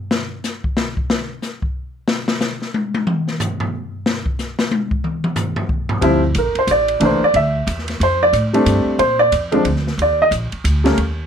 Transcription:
0.11 snare loud
0.44 snare soft
0.44 hi-hat pedal medium
0.64 kick medium
0.77 snare loud
0.97 kick medium
1.10 snare loud
1.42 snare soft
1.42 hi-hat pedal medium
1.62 kick medium
2.08 snare loud
2.28 snare loud
2.41 snare medium
2.41 hi-hat pedal medium
2.62 snare soft
2.74 high tom loud
2.94 high tom loud
3.07 mid tom loud
3.28 snare soft
3.40 floor tom medium
3.40 hi-hat pedal medium
3.60 floor tom loud
4.06 snare loud
4.26 kick medium
4.39 snare soft
4.39 hi-hat pedal medium
4.59 snare loud
4.71 high tom loud
4.91 kick medium
5.04 mid tom medium
5.24 mid tom loud
5.36 floor tom loud
5.36 hi-hat pedal medium
5.56 floor tom medium
5.69 kick medium
5.89 floor tom loud
6.01 6.34 D2 medium
6.01 6.20 F3 medium
6.01 6.20 G3 medium
6.01 6.21 C4 medium
6.01 6.21 E4 medium
6.01 ride medium
6.35 6.54 A#1 medium
6.35 6.57 A#4 medium
6.35 kick soft
6.35 hi-hat pedal medium
6.35 ride medium
6.55 6.69 C5 medium
6.55 muted upright bass stroke soft
6.55 ride soft
6.67 7.00 A1 medium
6.67 7.19 D5 medium
6.67 kick soft
6.67 hi-hat pedal medium
6.67 ride medium
6.88 ride soft
7.00 7.20 C2 medium
7.00 7.19 E3 medium
7.00 7.19 A3 medium
7.00 7.20 A#3 soft
7.00 7.20 D4 medium
7.00 kick soft
7.00 ride medium
7.05 7.23 C5 medium
7.21 7.35 D5 medium
7.21 muted upright bass stroke soft
7.34 7.66 D2 medium
7.34 7.85 E5 medium
7.34 kick soft
7.34 ride medium
7.67 7.99 E2 medium
7.67 kick soft
7.67 hi-hat pedal medium
7.67 ride medium
7.79 snare soft
7.88 snare soft
7.88 ride soft
8.00 8.32 F2 medium
8.00 8.21 C5 medium
8.00 kick soft
8.00 ride medium
8.23 8.34 D5 medium
8.33 8.65 A2 medium
8.33 kick soft
8.33 hi-hat pedal medium
8.33 ride medium
8.53 8.97 G3 medium
8.53 8.97 A3 medium
8.53 8.97 C4 medium
8.53 8.98 D4 medium
8.53 ride soft
8.66 8.85 G2 medium
8.66 hi-hat pedal medium
8.66 ride medium
8.85 muted upright bass stroke soft
8.99 9.31 A#2 medium
8.99 9.19 C5 medium
8.99 kick soft
8.99 ride medium
9.19 9.32 D5 medium
9.32 9.64 F2 medium
9.32 kick soft
9.32 hi-hat pedal medium
9.32 ride medium
9.52 9.64 F3 medium
9.52 9.64 G#3 medium
9.52 9.64 C4 medium
9.52 9.64 D4 medium
9.52 ride soft
9.65 9.97 D2 medium
9.65 kick soft
9.65 ride medium
9.76 snare soft
9.87 snare soft
9.98 10.30 D#2 medium
9.98 kick soft
9.98 ride medium
10.02 10.20 D5 medium
10.22 10.28 D#5 medium
10.31 10.50 A#1 medium
10.31 kick soft
10.31 hi-hat pedal medium
10.31 ride medium
10.52 muted upright bass stroke soft
10.52 ride soft
10.64 10.96 D2 medium
10.64 kick soft
10.64 hi-hat pedal medium
10.64 ride medium
10.84 10.96 G3 medium
10.84 10.96 A3 medium
10.84 10.96 A#3 medium
10.84 10.97 C#4 medium
10.84 snare medium
10.84 ride soft
10.98 11.27 D#2 medium
10.98 kick soft
10.98 ride medium

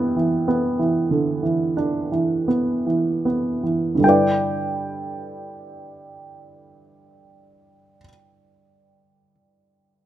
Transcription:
0.00 3.93 G2 soft
0.00 0.16 E3 soft
0.00 0.46 B3 soft
0.00 1.74 D4 soft
0.00 2.47 B4 soft
0.00 2.47 E5 soft
0.00 2.46 G5 medium
0.16 0.78 E3 soft
0.48 2.46 B3 soft
0.79 1.41 E3 soft
1.11 3.96 D3 soft
1.43 2.10 E3 soft
1.77 3.99 D4 soft
2.12 2.85 E3 soft
2.48 3.24 B3 soft
2.86 3.62 E3 soft
3.25 4.01 B3 soft
3.63 4.02 E3 soft
3.95 7.96 G2 soft
3.95 7.99 D3 soft
4.00 8.01 G3 soft
4.00 8.05 E4 soft
4.00 8.05 G5 soft
4.07 8.08 B4 soft
4.07 8.10 D5 soft

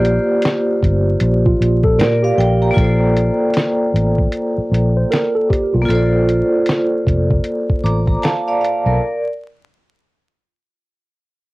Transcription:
0.00 0.18 A#1 loud
0.00 2.69 A#3 medium
0.00 2.71 F4 medium
0.00 2.73 G4 medium
0.00 1.96 C5 medium
0.00 1.98 D5 medium
0.05 closed hi-hat medium
0.42 snare loud
0.42 closed hi-hat medium
0.83 1.14 G1 medium
0.83 kick medium
0.83 closed hi-hat medium
1.20 1.53 A#1 loud
1.20 closed hi-hat medium
1.46 1.83 F4 medium
1.46 kick medium
1.61 2.01 A#1 medium
1.61 closed hi-hat medium
1.84 1.98 A4 medium
1.84 kick medium
1.99 2.31 A#2 loud
1.99 2.23 A#4 medium
1.99 2.23 A#4 soft
1.99 2.22 D5 medium
1.99 snare loud
1.99 closed hi-hat medium
2.23 2.73 G4 medium
2.23 2.38 D5 soft
2.23 2.37 F5 medium
2.38 2.70 A#1 medium
2.38 2.62 G5 medium
2.38 closed hi-hat medium
2.62 3.00 G5 soft
2.62 2.99 A#5 medium
2.71 5.80 A#3 medium
2.71 5.83 F4 medium
2.77 3.29 A#1 loud
2.77 5.85 A4 medium
2.77 kick loud
2.77 closed hi-hat medium
2.81 5.87 C5 medium
2.81 5.88 D5 medium
3.17 closed hi-hat medium
3.54 snare loud
3.54 closed hi-hat medium
3.94 4.26 A1 medium
3.94 closed hi-hat medium
4.18 kick medium
4.32 closed hi-hat medium
4.58 muted fingered electric bass stroke soft
4.72 5.03 A#1 medium
4.72 closed hi-hat medium
4.97 5.10 C5 medium
5.10 5.34 A#4 medium
5.10 snare loud
5.10 closed hi-hat medium
5.35 5.48 A4 medium
5.49 5.73 G4 medium
5.49 kick medium
5.49 closed hi-hat medium
5.74 5.86 B1 medium
5.74 6.87 F4 medium
5.82 8.93 A#3 medium
5.82 8.94 F4 medium
5.88 6.41 A#1 medium
5.88 7.79 A4 medium
5.88 7.81 C5 medium
5.88 closed hi-hat medium
5.95 7.83 D5 medium
6.29 closed hi-hat medium
6.66 snare loud
6.66 closed hi-hat medium
7.07 7.38 F1 medium
7.07 kick medium
7.07 closed hi-hat medium
7.30 kick medium
7.44 closed hi-hat medium
7.70 kick medium
7.84 8.16 A1 medium
7.84 8.06 A#5 soft
7.84 8.07 D6 medium
7.84 closed hi-hat medium
8.07 8.21 A#5 medium
8.07 kick medium
8.22 8.46 F5 medium
8.22 8.46 A5 medium
8.22 snare loud
8.22 closed hi-hat medium
8.48 8.60 D5 medium
8.48 8.60 F5 medium
8.61 8.85 D5 medium
8.61 8.85 F5 medium
8.61 closed hi-hat medium
8.86 8.98 B1 medium
8.86 9.23 A#4 soft
8.86 9.23 D5 soft

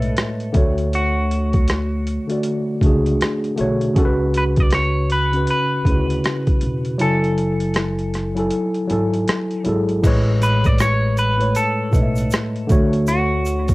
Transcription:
0.00 0.10 B1 medium
0.00 0.56 A2 medium
0.00 0.54 A3 medium
0.00 0.95 A4 medium
0.00 0.57 B4 medium
0.00 0.56 C#5 medium
0.00 0.56 D#5 medium
0.00 0.59 E5 medium
0.00 closed hi-hat soft
0.17 cross-stick loud
0.17 closed hi-hat medium
0.40 closed hi-hat soft
0.52 2.17 D2 medium
0.52 1.94 D3 medium
0.52 1.95 A3 medium
0.52 1.96 F#4 medium
0.52 kick loud
0.52 closed hi-hat medium
0.57 1.96 C#5 medium
0.78 closed hi-hat soft
0.93 3.56 F#4 medium
0.93 closed hi-hat medium
1.31 closed hi-hat medium
1.53 kick medium
1.53 closed hi-hat soft
1.68 cross-stick loud
1.68 closed hi-hat medium
2.07 closed hi-hat medium
2.28 2.77 D3 medium
2.28 2.78 A3 medium
2.28 2.79 F#4 medium
2.28 closed hi-hat medium
2.32 2.79 D5 medium
2.43 closed hi-hat medium
2.81 3.14 C#2 medium
2.81 3.53 A3 medium
2.81 3.52 D4 medium
2.81 3.54 F#4 medium
2.81 kick medium
2.81 closed hi-hat soft
2.86 3.55 G#4 medium
3.06 closed hi-hat soft
3.21 cross-stick loud
3.21 closed hi-hat medium
3.44 closed hi-hat soft
3.56 3.91 B1 medium
3.56 3.92 D3 medium
3.56 3.93 A3 medium
3.56 3.94 F#4 medium
3.56 closed hi-hat medium
3.61 3.95 C#5 loud
3.81 closed hi-hat soft
3.94 5.44 C#2 medium
3.94 5.17 C#3 loud
3.94 5.18 C#4 loud
3.94 5.19 F#4 loud
3.94 kick loud
3.94 closed hi-hat medium
3.99 4.05 A4 loud
4.05 5.23 B4 loud
4.34 4.43 B4 medium
4.34 closed hi-hat medium
4.56 4.74 D5 loud
4.56 kick medium
4.56 closed hi-hat soft
4.71 cross-stick medium
4.71 closed hi-hat medium
4.75 5.12 C#5 loud
5.10 5.49 B4 medium
5.10 closed hi-hat medium
5.32 5.81 C#3 medium
5.32 5.82 C#4 medium
5.32 5.83 F#4 medium
5.32 closed hi-hat medium
5.37 5.84 B4 medium
5.47 7.06 B4 medium
5.47 closed hi-hat medium
5.85 6.18 D2 medium
5.85 6.91 C#3 medium
5.85 6.92 C#4 medium
5.85 5.95 E4 soft
5.85 kick medium
5.85 closed hi-hat medium
5.89 6.93 B4 medium
5.95 6.96 F#4 medium
6.10 closed hi-hat soft
6.24 cross-stick loud
6.24 closed hi-hat medium
6.47 kick medium
6.47 closed hi-hat soft
6.61 7.01 E1 medium
6.61 closed hi-hat medium
6.85 closed hi-hat soft
6.98 8.48 F#1 medium
6.98 8.21 F#3 loud
6.98 8.22 E4 medium
6.98 9.63 A4 medium
6.98 8.23 G#5 medium
6.98 closed hi-hat medium
7.02 8.23 A4 loud
7.24 closed hi-hat soft
7.38 closed hi-hat medium
7.60 closed hi-hat soft
7.74 cross-stick loud
7.74 closed hi-hat medium
7.99 closed hi-hat soft
8.14 cross-stick soft
8.14 closed hi-hat medium
8.35 8.85 F#3 medium
8.35 8.85 E4 medium
8.35 8.86 G#5 medium
8.35 closed hi-hat medium
8.39 8.87 A4 medium
8.51 closed hi-hat medium
8.74 closed hi-hat soft
8.87 9.23 G#1 medium
8.87 9.59 F#3 medium
8.87 9.60 E4 medium
8.87 9.61 G#5 medium
8.87 closed hi-hat medium
8.92 9.61 A4 medium
9.14 closed hi-hat soft
9.28 cross-stick loud
9.28 closed hi-hat medium
9.51 closed hi-hat soft
9.64 9.98 G#1 medium
9.64 10.00 F#3 medium
9.64 10.01 E4 medium
9.64 10.02 G#4 medium
9.64 closed hi-hat medium
9.68 10.02 A4 medium
9.89 closed hi-hat soft
10.02 11.52 A1 medium
10.02 11.25 A2 loud
10.02 11.26 G#3 loud
10.02 11.27 B4 loud
10.02 kick loud
10.02 closed hi-hat medium
10.02 crash medium
10.02 shaker medium
10.07 11.27 C#5 loud
10.42 10.66 B4 medium
10.42 closed hi-hat medium
10.42 shaker medium
10.64 10.81 D5 loud
10.64 kick medium
10.64 closed hi-hat soft
10.64 shaker soft
10.78 11.18 C#5 loud
10.78 cross-stick medium
10.78 closed hi-hat medium
10.78 shaker medium
11.17 11.57 B4 medium
11.17 closed hi-hat medium
11.17 shaker soft
11.37 11.88 A2 medium
11.37 11.88 A3 medium
11.37 11.89 B4 medium
11.37 closed hi-hat soft
11.42 11.90 C#5 medium
11.55 13.04 A4 medium
11.55 closed hi-hat medium
11.55 shaker medium
11.91 12.26 B1 medium
11.91 12.68 A2 medium
11.91 12.68 A3 medium
11.91 12.70 B4 medium
11.91 kick medium
11.91 closed hi-hat medium
11.91 shaker soft
11.96 12.03 D#5 medium
12.02 12.74 E5 medium
12.16 closed hi-hat soft
12.16 shaker soft
12.31 cross-stick loud
12.31 closed hi-hat medium
12.31 shaker medium
12.56 closed hi-hat soft
12.67 13.74 D2 medium
12.67 13.74 D3 medium
12.67 13.74 A3 medium
12.67 13.74 F#4 medium
12.67 kick loud
12.67 closed hi-hat medium
12.67 shaker soft
12.72 13.74 C#5 loud
12.93 closed hi-hat soft
13.07 13.74 F#4 medium
13.07 closed hi-hat medium
13.07 shaker medium
13.46 closed hi-hat medium
13.46 shaker medium
13.68 kick medium
13.68 closed hi-hat medium
13.68 shaker soft

